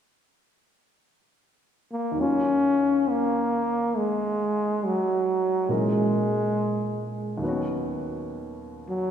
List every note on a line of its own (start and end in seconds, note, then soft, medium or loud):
1.91 2.22 A#3 medium
2.12 5.66 D#2 soft
2.12 5.68 D#3 soft
2.17 5.69 F#3 soft
2.17 5.69 C#4 soft
2.17 3.11 C#4 medium
2.22 5.72 F4 soft
3.10 3.99 A#3 medium
3.97 4.87 G#3 medium
4.85 5.74 F#3 medium
5.69 7.42 A#2 soft
5.69 7.42 E3 soft
5.69 7.43 G#3 soft
5.69 7.44 G#3 medium
5.69 7.43 C#4 soft
5.69 7.43 A#4 soft
7.38 9.11 D#2 medium
7.38 9.11 D#3 soft
7.42 9.11 F#3 soft
7.42 9.11 B3 soft
7.46 9.11 C#4 soft
7.46 9.11 F#4 medium
8.89 9.11 F#3 medium